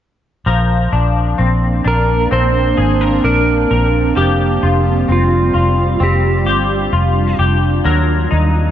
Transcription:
0.46 0.87 A#1 medium
0.46 4.15 F3 medium
0.46 4.13 A#3 medium
0.46 5.97 C4 medium
0.46 4.13 D4 medium
0.46 2.77 A#4 medium
0.93 1.34 A#1 medium
0.93 1.83 D4 medium
1.38 1.80 A#1 medium
1.38 2.31 C4 medium
1.84 2.26 A#1 medium
1.84 3.23 D4 medium
1.84 2.30 A#4 medium
2.31 2.72 A#1 medium
2.31 5.08 C4 medium
2.31 3.27 C5 medium
2.77 3.19 G#1 medium
2.77 3.01 G#4 medium
3.01 3.70 A#4 medium
3.24 3.65 A#1 medium
3.24 4.26 D4 medium
3.24 4.13 A#4 medium
3.71 4.11 A#1 medium
3.71 4.16 A#4 medium
4.16 4.57 F1 medium
4.16 7.84 F3 medium
4.16 7.83 G3 medium
4.16 7.82 F4 medium
4.16 6.45 G4 medium
4.16 5.12 G4 medium
4.63 5.03 F1 medium
4.63 5.53 F4 medium
5.09 5.49 F1 medium
5.09 6.00 C4 soft
5.09 6.03 F4 medium
5.54 5.95 F1 medium
5.54 6.92 F4 medium
6.00 6.47 F1 medium
6.00 8.71 C4 medium
6.00 7.85 D4 medium
6.00 7.37 G4 medium
6.47 6.88 G1 medium
6.47 7.38 G4 medium
6.93 7.34 F1 medium
6.93 7.95 F4 medium
7.39 7.80 F1 medium
7.39 7.85 G4 medium
7.84 8.26 D#2 medium
7.84 8.71 F#3 medium
7.84 8.71 A#3 medium
7.84 8.71 C4 medium
7.84 8.71 D#4 medium
7.84 8.71 F#4 medium
7.84 8.71 A#4 medium
8.31 8.71 D#2 loud
8.31 8.71 D#4 medium

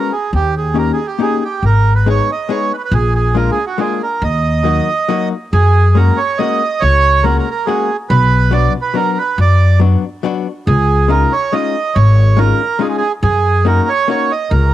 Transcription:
0.00 0.11 G#3 soft
0.00 0.11 B3 soft
0.00 0.11 C#4 soft
0.00 0.12 F#4 soft
0.00 0.12 A#4 medium
0.12 0.31 G#4 medium
0.33 0.89 D#2 medium
0.33 0.55 G4 medium
0.57 0.78 G#4 medium
0.74 0.98 A#3 soft
0.74 0.98 C#4 soft
0.74 0.98 D#4 soft
0.74 0.99 G4 soft
0.74 0.92 A#4 medium
0.93 1.07 G#4 medium
1.07 1.21 G4 medium
1.19 1.41 A#3 medium
1.19 1.42 C#4 soft
1.19 1.42 D#4 soft
1.19 1.42 G4 medium
1.19 1.44 G#4 medium
1.45 1.65 G4 medium
1.63 2.19 G#1 medium
1.63 1.93 A#4 medium
1.95 2.08 B4 medium
2.06 2.28 G#3 soft
2.06 2.28 B3 soft
2.06 2.29 D#4 soft
2.06 2.29 G#4 medium
2.06 2.31 C#5 medium
2.32 2.51 D#5 medium
2.49 2.71 G#3 medium
2.49 2.72 B3 medium
2.49 2.72 D#4 soft
2.49 2.72 G#4 medium
2.49 2.72 C#5 medium
2.73 2.76 B4 medium
2.78 2.82 B4 soft
2.85 2.94 B4 medium
2.91 3.48 A#1 loud
2.91 3.14 G#4 medium
3.15 3.36 G#4 medium
3.35 3.57 G#3 medium
3.35 3.58 A#3 soft
3.35 3.58 D4 soft
3.35 3.58 F4 medium
3.35 3.51 A#4 medium
3.51 3.65 G#4 medium
3.66 3.80 F#4 medium
3.78 4.01 G#3 medium
3.78 4.01 A#3 soft
3.78 4.01 D4 medium
3.78 4.01 F4 medium
3.78 4.02 G#4 medium
4.03 4.23 A#4 medium
4.22 4.78 D#2 loud
4.22 5.29 D#5 medium
4.64 4.87 F#3 soft
4.64 4.88 A#3 soft
4.64 4.88 D#4 soft
4.64 4.88 F#4 medium
5.09 5.32 F#3 medium
5.09 5.32 A#3 medium
5.09 5.32 D#4 medium
5.09 5.32 F#4 medium
5.53 6.09 F#2 loud
5.53 5.97 G#4 medium
5.95 6.18 G#3 medium
5.95 6.18 A#3 soft
5.95 6.19 C#4 soft
5.95 6.19 F#4 soft
5.95 6.19 A#4 medium
6.17 6.39 C#5 medium
6.38 6.61 G#3 soft
6.38 6.61 A#3 soft
6.38 6.62 C#4 soft
6.38 6.62 F#4 medium
6.38 6.83 D#5 medium
6.80 7.37 C#2 medium
6.80 7.25 C#5 loud
7.23 7.46 G#3 medium
7.23 7.46 A#3 soft
7.23 7.47 C#4 medium
7.23 7.47 F#4 medium
7.23 7.37 A#4 medium
7.39 7.49 A#4 medium
7.51 7.66 A#4 medium
7.66 7.89 G#3 medium
7.66 7.89 A#3 soft
7.66 7.89 C#4 soft
7.66 7.90 F#4 medium
7.66 7.97 G#4 medium
8.10 8.65 B1 loud
8.10 8.54 B4 loud
8.51 8.74 F#3 medium
8.51 8.74 B3 soft
8.51 8.74 D4 medium
8.51 8.75 F#4 medium
8.51 8.73 D5 medium
8.82 8.96 B4 medium
8.94 9.17 F#3 medium
8.94 9.17 B3 soft
8.94 9.18 D4 medium
8.94 9.18 F#4 soft
8.94 9.18 A#4 medium
9.18 9.39 B4 medium
9.38 9.94 F#2 loud
9.38 9.79 D5 medium
9.80 10.03 F#3 medium
9.80 10.03 B3 soft
9.80 10.04 D4 medium
9.80 10.03 F#4 medium
10.23 10.46 F#3 medium
10.23 10.46 B3 medium
10.23 10.46 D4 medium
10.23 10.47 F#4 medium
10.67 11.23 C#2 loud
10.67 11.11 G#4 medium
11.08 11.31 G#3 medium
11.08 11.32 C#4 soft
11.08 11.32 D#4 soft
11.08 11.32 F4 medium
11.08 11.33 A#4 medium
11.32 11.54 C#5 medium
11.52 11.75 G#3 soft
11.52 11.75 C#4 soft
11.52 11.76 D#4 medium
11.52 11.76 F4 medium
11.52 11.97 D#5 medium
11.95 12.51 G#1 loud
11.95 12.39 C#5 medium
12.37 12.60 G#3 medium
12.37 12.60 C#4 soft
12.37 12.60 D#4 soft
12.37 12.61 F4 medium
12.37 12.82 A#4 medium
12.79 13.02 G#3 medium
12.79 13.02 C#4 soft
12.79 13.03 D#4 soft
12.79 13.03 F4 medium
12.79 12.88 G#4 medium
12.89 12.96 G#4 soft
12.98 13.12 G#4 medium
13.23 13.78 F#2 loud
13.23 13.67 G#4 medium
13.65 13.87 A#3 medium
13.65 13.87 C#4 soft
13.65 13.88 D#4 soft
13.65 13.88 F#4 medium
13.65 13.89 A#4 medium
13.89 14.09 C#5 medium
14.08 14.30 A#3 medium
14.08 14.30 C#4 soft
14.08 14.30 D#4 soft
14.08 14.31 F#4 medium
14.08 14.32 C#5 medium
14.31 14.52 D#5 medium
14.50 14.74 C#2 loud
14.50 14.74 A#4 medium

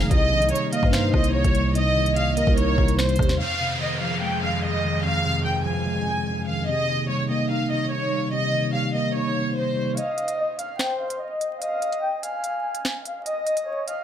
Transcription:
0.00 0.10 F1 loud
0.00 0.12 F2 loud
0.00 0.11 C3 medium
0.00 0.12 D#3 medium
0.00 0.11 F3 loud
0.00 0.11 G#3 medium
0.00 3.36 D#4 medium
0.00 snare medium
0.11 0.33 C2 loud
0.11 3.36 C3 medium
0.11 1.12 C3 loud
0.11 3.36 A#3 medium
0.11 0.49 D#5 loud
0.11 0.69 D#5 loud
0.11 kick loud
0.11 closed hi-hat medium
0.31 0.43 A#1 loud
0.31 1.34 D#3 medium
0.42 0.51 C2 loud
0.42 closed hi-hat soft
0.49 1.53 G3 medium
0.49 0.70 C#5 medium
0.49 closed hi-hat medium
0.55 closed hi-hat medium
0.73 1.75 A#3 loud
0.73 0.91 D#5 medium
0.73 0.92 F5 medium
0.73 closed hi-hat medium
0.83 1.12 G2 loud
0.83 kick loud
0.93 1.96 D#4 medium
0.93 1.32 C5 loud
0.93 1.11 F5 medium
0.93 finger snap loud
0.93 snare loud
0.93 closed hi-hat medium
1.14 1.43 C2 loud
1.14 1.74 C3 medium
1.14 1.32 D#5 medium
1.14 kick medium
1.14 cross-stick medium
1.24 closed hi-hat medium
1.34 1.73 C#5 medium
1.44 2.43 C2 loud
1.44 kick medium
1.44 closed hi-hat medium
1.54 2.15 G3 medium
1.54 closed hi-hat medium
1.75 2.77 C3 medium
1.75 2.14 D#5 loud
1.75 2.33 D#5 loud
1.75 closed hi-hat medium
1.96 2.99 D#3 medium
2.06 closed hi-hat soft
2.16 3.18 G3 medium
2.16 2.35 F5 medium
2.16 closed hi-hat medium
2.37 3.40 A#3 loud
2.37 2.95 A#4 loud
2.37 2.55 D#5 medium
2.37 closed hi-hat medium
2.47 2.77 C2 loud
2.47 kick loud
2.58 3.40 D#4 medium
2.58 2.96 C#5 medium
2.58 closed hi-hat medium
2.78 3.18 C2 loud
2.78 3.40 C3 medium
2.78 kick medium
2.88 closed hi-hat medium
2.99 3.37 C5 medium
2.99 finger snap loud
2.99 snare loud
3.09 closed hi-hat soft
3.16 3.39 D#2 loud
3.16 3.40 G3 medium
3.16 kick loud
3.16 cross-stick loud
3.16 closed hi-hat medium
3.23 closed hi-hat medium
3.29 snare medium
3.40 6.65 F2 medium
3.40 4.41 F2 medium
3.40 6.65 D#3 medium
3.40 6.65 G#4 medium
3.40 3.78 F5 loud
3.40 downlifter medium
3.60 4.63 C3 medium
3.81 4.83 D#3 medium
3.81 3.99 D#5 medium
4.01 5.04 F3 medium
4.01 4.20 F5 medium
4.22 5.24 G#3 medium
4.22 4.40 G5 medium
4.42 5.02 F2 medium
4.42 4.61 F5 medium
4.63 5.02 D#5 medium
4.84 5.44 D#3 medium
5.04 6.06 F2 medium
5.04 5.43 F5 loud
5.25 6.27 C3 medium
5.45 6.47 D#3 medium
5.45 5.63 G5 medium
5.65 6.69 F3 medium
5.65 6.44 G#5 medium
5.87 6.69 G#3 medium
6.07 6.69 F2 medium
6.48 6.68 D#3 medium
6.48 6.66 F5 medium
6.68 9.94 C3 medium
6.68 7.70 C3 medium
6.68 9.94 A#3 medium
6.68 9.94 D#4 medium
6.68 7.07 D#5 loud
6.89 7.92 D#3 medium
7.09 8.11 G3 medium
7.09 7.28 C#5 medium
7.30 8.33 A#3 medium
7.30 7.48 D#5 medium
7.50 8.53 D#4 medium
7.50 7.69 F5 medium
7.71 8.31 C3 medium
7.71 7.89 D#5 medium
7.92 8.30 C#5 medium
8.12 8.73 G3 medium
8.33 9.34 C3 medium
8.33 8.71 D#5 loud
8.53 9.56 D#3 medium
8.74 9.76 G3 medium
8.74 8.92 F5 medium
8.94 9.97 A#3 medium
8.94 9.13 D#5 medium
9.15 9.97 D#4 medium
9.15 9.54 C#5 medium
9.36 9.97 C3 medium
9.56 9.95 C5 medium
9.77 9.97 G3 medium
9.97 10.55 D#5 loud
9.97 10.36 F5 loud
9.97 closed hi-hat medium
10.18 closed hi-hat medium
10.28 closed hi-hat medium
10.38 10.57 D#5 medium
10.59 10.77 F5 medium
10.59 10.79 F5 medium
10.59 closed hi-hat medium
10.79 11.18 C5 loud
10.79 10.98 G5 medium
10.79 finger snap loud
10.79 snare loud
10.79 closed hi-hat medium
11.00 11.18 F5 medium
11.10 closed hi-hat medium
11.20 11.59 D#5 medium
11.41 closed hi-hat medium
11.62 12.20 D#5 loud
11.62 12.00 F5 loud
11.62 closed hi-hat medium
11.82 closed hi-hat medium
11.92 closed hi-hat soft
12.03 12.21 G5 medium
12.23 12.81 F5 medium
12.23 13.01 G#5 medium
12.23 closed hi-hat medium
12.44 closed hi-hat medium
12.75 closed hi-hat medium
12.85 finger snap loud
12.85 snare loud
13.05 13.24 F5 medium
13.05 closed hi-hat medium
13.26 13.65 D#5 loud
13.26 13.84 D#5 loud
13.26 closed hi-hat medium
13.47 closed hi-hat medium
13.57 closed hi-hat medium
13.67 13.85 C#5 medium
13.88 14.04 D#5 medium
13.88 14.04 F5 medium
13.88 closed hi-hat medium

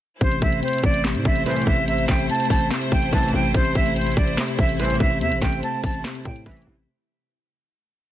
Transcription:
0.21 0.41 A1 loud
0.21 1.03 C3 loud
0.21 6.84 A3 medium
0.21 6.84 E4 medium
0.21 6.84 C5 medium
0.21 0.39 C5 loud
0.21 kick loud
0.21 closed hi-hat medium
0.32 closed hi-hat medium
0.42 0.62 A1 loud
0.42 1.24 A3 medium
0.42 0.59 E5 medium
0.42 kick loud
0.42 closed hi-hat loud
0.52 closed hi-hat medium
0.63 1.67 C4 loud
0.63 0.80 C5 loud
0.63 closed hi-hat medium
0.68 closed hi-hat medium
0.73 closed hi-hat medium
0.78 closed hi-hat medium
0.83 1.16 A1 loud
0.83 1.01 D5 medium
0.83 kick loud
0.83 closed hi-hat medium
0.94 closed hi-hat medium
1.04 1.66 C3 medium
1.04 snare loud
1.04 clap medium
1.04 closed hi-hat medium
1.15 1.25 A2 loud
1.15 closed hi-hat medium
1.25 1.45 A1 loud
1.25 2.07 A3 medium
1.25 1.43 E5 medium
1.25 kick loud
1.25 closed hi-hat medium
1.36 closed hi-hat medium
1.46 1.76 C2 loud
1.46 1.76 A2 loud
1.46 1.76 E3 loud
1.46 1.64 C5 medium
1.46 closed hi-hat medium
1.51 closed hi-hat medium
1.57 closed hi-hat medium
1.62 closed hi-hat soft
1.67 2.07 A1 loud
1.67 1.87 C3 medium
1.67 1.84 E5 medium
1.67 kick loud
1.88 2.70 C3 medium
1.88 2.05 E5 loud
1.88 closed hi-hat medium
1.98 closed hi-hat medium
2.09 2.29 A1 loud
2.09 2.26 G5 medium
2.09 kick loud
2.09 snare loud
2.09 clap medium
2.09 closed hi-hat loud
2.19 closed hi-hat medium
2.30 3.34 C4 medium
2.30 2.47 A5 medium
2.30 closed hi-hat medium
2.35 closed hi-hat medium
2.40 closed hi-hat medium
2.45 closed hi-hat medium
2.50 2.70 A1 loud
2.50 2.68 A5 medium
2.50 kick medium
2.50 open hi-hat medium
2.61 closed hi-hat medium
2.71 3.32 C3 medium
2.71 snare loud
2.71 clap loud
2.71 closed hi-hat medium
2.82 closed hi-hat medium
2.92 3.12 A1 loud
2.92 3.54 A3 medium
2.92 3.09 G5 medium
2.92 kick loud
2.92 closed hi-hat medium
3.02 closed hi-hat medium
3.13 3.33 A1 loud
3.13 3.42 C2 loud
3.13 3.42 A2 loud
3.13 3.42 E3 loud
3.13 3.30 A5 medium
3.13 kick loud
3.13 closed hi-hat medium
3.18 closed hi-hat medium
3.23 closed hi-hat medium
3.28 closed hi-hat soft
3.33 3.54 A1 loud
3.33 3.53 C3 medium
3.33 3.51 G5 loud
3.54 3.74 A1 loud
3.54 4.37 C3 loud
3.54 3.72 C5 loud
3.54 kick loud
3.54 closed hi-hat medium
3.65 closed hi-hat medium
3.75 4.15 A1 loud
3.75 4.57 A3 medium
3.75 3.93 E5 medium
3.75 kick medium
3.75 closed hi-hat loud
3.86 closed hi-hat medium
3.96 5.00 C4 medium
3.96 4.14 C5 medium
3.96 closed hi-hat medium
4.01 closed hi-hat medium
4.07 closed hi-hat medium
4.12 closed hi-hat medium
4.17 4.37 A1 loud
4.17 4.34 D5 medium
4.17 kick loud
4.17 closed hi-hat medium
4.27 closed hi-hat medium
4.38 4.99 C3 medium
4.38 snare loud
4.38 clap loud
4.38 closed hi-hat medium
4.48 closed hi-hat medium
4.59 4.99 A1 loud
4.59 5.41 A3 medium
4.59 4.76 E5 loud
4.59 kick loud
4.59 closed hi-hat medium
4.69 closed hi-hat medium
4.79 5.09 C2 loud
4.79 5.09 A2 loud
4.79 5.09 E3 loud
4.79 4.97 C5 medium
4.79 closed hi-hat medium
4.85 closed hi-hat medium
4.90 closed hi-hat medium
4.95 closed hi-hat soft
5.00 5.23 A1 loud
5.00 5.20 C3 medium
5.00 5.18 E5 loud
5.00 kick medium
5.21 5.33 E2 loud
5.21 6.03 C3 medium
5.21 5.39 E5 loud
5.21 closed hi-hat loud
5.32 5.41 A1 loud
5.32 closed hi-hat medium
5.42 5.62 A1 loud
5.42 6.24 A3 medium
5.42 5.59 G5 medium
5.42 kick loud
5.42 snare loud
5.42 clap medium
5.42 closed hi-hat loud
5.53 closed hi-hat medium
5.63 6.67 C4 medium
5.63 5.80 A5 medium
5.63 closed hi-hat medium
5.84 6.04 A1 loud
5.84 6.01 A5 medium
5.84 kick loud
5.84 open hi-hat medium
5.94 closed hi-hat medium
6.05 6.66 C3 loud
6.05 snare loud
6.05 clap medium
6.05 closed hi-hat medium
6.15 closed hi-hat medium
6.25 6.45 A2 loud
6.25 6.88 A3 medium
6.25 6.43 G5 medium
6.25 kick loud
6.25 closed hi-hat medium
6.36 closed hi-hat medium
6.46 6.66 A1 loud
6.46 6.76 C2 loud
6.46 6.76 A2 loud
6.46 6.76 E3 loud
6.46 6.64 E5 medium
6.46 kick loud
6.46 closed hi-hat medium
6.51 closed hi-hat medium
6.57 closed hi-hat medium
6.62 closed hi-hat soft
6.67 6.87 A1 loud
6.67 6.88 C3 medium

